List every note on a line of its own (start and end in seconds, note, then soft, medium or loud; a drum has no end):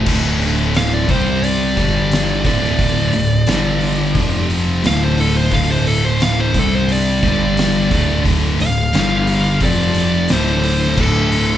0.06 1.05 D1 loud
0.06 1.08 D2 medium
0.06 1.09 A2 loud
0.06 1.09 D3 loud
0.06 1.09 D4 medium
0.06 1.09 A4 medium
0.06 1.76 D5 medium
0.06 kick loud
0.06 crash loud
0.41 open hi-hat medium
0.75 0.93 F5 loud
0.75 snare loud
0.75 open hi-hat medium
0.94 1.09 D5 medium
1.08 1.73 C2 loud
1.08 1.76 C3 medium
1.08 1.76 G3 loud
1.08 1.77 C4 medium
1.08 1.77 G4 medium
1.08 1.45 C5 medium
1.08 kick loud
1.08 open hi-hat medium
1.43 2.43 D5 medium
1.43 open hi-hat medium
1.77 2.41 G1 loud
1.77 2.45 G2 medium
1.77 2.45 D3 medium
1.77 2.45 G3 loud
1.77 2.46 G3 medium
1.77 3.45 D4 medium
1.77 4.14 A4 medium
1.77 kick loud
1.77 open hi-hat medium
2.11 snare medium
2.11 open hi-hat medium
2.45 3.10 D1 loud
2.45 3.12 D2 medium
2.45 3.13 A2 medium
2.45 3.14 D3 medium
2.45 3.47 D5 medium
2.45 4.47 D5 medium
2.45 kick loud
2.45 snare soft
2.45 open hi-hat medium
2.64 snare soft
2.79 kick loud
2.79 open hi-hat medium
3.13 3.45 D1 medium
3.13 3.41 D2 medium
3.13 3.41 A2 medium
3.13 open hi-hat medium
3.46 4.12 G1 loud
3.46 4.16 G2 loud
3.46 4.17 D3 loud
3.46 4.14 G3 medium
3.46 4.17 G3 loud
3.46 4.14 D4 medium
3.46 snare loud
3.46 open hi-hat medium
3.81 open hi-hat medium
4.13 4.80 F1 medium
4.13 4.83 F2 medium
4.13 4.84 C3 loud
4.13 4.82 F3 medium
4.13 4.83 C4 medium
4.13 4.83 G4 medium
4.13 kick loud
4.13 open hi-hat medium
4.17 4.84 F3 loud
4.50 open hi-hat medium
4.82 5.48 D1 loud
4.82 5.51 D2 medium
4.82 5.51 A2 medium
4.82 6.52 D3 medium
4.82 5.51 D3 loud
4.82 6.52 A3 medium
4.82 8.88 D4 medium
4.82 open hi-hat medium
4.86 5.02 F5 loud
4.86 snare loud
5.03 5.20 C5 medium
5.18 5.37 A4 medium
5.18 open hi-hat medium
5.37 5.53 C5 loud
5.51 6.50 D1 loud
5.51 6.53 D2 medium
5.51 6.54 A2 medium
5.51 6.54 D3 medium
5.51 5.70 F5 medium
5.51 kick loud
5.51 open hi-hat medium
5.70 5.87 C5 medium
5.87 6.05 A4 medium
5.87 open hi-hat medium
6.05 6.21 C5 medium
6.20 6.38 F5 loud
6.20 snare loud
6.20 open hi-hat medium
6.40 6.59 C5 medium
6.52 7.19 C2 medium
6.52 7.21 C3 medium
6.52 7.22 C3 loud
6.52 7.20 G3 medium
6.52 kick loud
6.52 open hi-hat medium
6.56 7.23 G3 loud
6.56 7.23 C4 medium
6.56 6.75 A4 medium
6.75 6.90 C5 medium
6.89 8.23 D5 loud
6.89 open hi-hat medium
7.21 7.87 G1 loud
7.21 7.90 G2 medium
7.21 7.90 D3 loud
7.21 7.89 G3 medium
7.21 7.91 G3 medium
7.21 9.58 A4 medium
7.21 kick loud
7.21 open hi-hat medium
7.57 snare loud
7.57 open hi-hat medium
7.88 8.55 D1 loud
7.88 8.58 D2 medium
7.88 8.58 A2 medium
7.88 8.59 D3 loud
7.88 8.91 D5 medium
7.88 kick loud
7.88 open hi-hat medium
8.25 kick loud
8.25 open hi-hat medium
8.59 8.91 D1 medium
8.59 8.87 D2 medium
8.59 8.87 A2 medium
8.59 9.60 F5 loud
8.59 open hi-hat medium
8.93 9.58 G1 loud
8.93 9.61 G2 medium
8.93 9.61 D3 loud
8.93 9.61 G3 medium
8.93 9.61 G3 loud
8.93 9.60 D4 medium
8.93 snare loud
8.93 open hi-hat medium
9.27 open hi-hat medium
9.60 10.26 F1 medium
9.60 10.29 F2 loud
9.60 10.29 C3 loud
9.60 10.29 F3 medium
9.60 10.29 F3 loud
9.60 10.29 C4 medium
9.60 10.29 G4 medium
9.60 10.29 D5 loud
9.60 kick loud
9.60 open hi-hat medium
9.95 open hi-hat medium
10.28 10.94 D1 loud
10.28 10.96 D2 medium
10.28 10.97 A2 loud
10.28 11.58 D3 medium
10.28 10.97 D3 medium
10.28 11.58 A3 medium
10.28 11.58 D4 medium
10.28 snare medium
10.28 open hi-hat medium
10.33 10.97 C5 medium
10.63 open hi-hat medium
10.83 snare soft
10.97 11.58 D1 loud
10.97 11.58 D2 medium
10.97 11.58 A2 loud
10.97 11.58 D3 medium
10.97 11.58 A4 medium
10.97 kick loud
10.97 crash loud
11.32 open hi-hat medium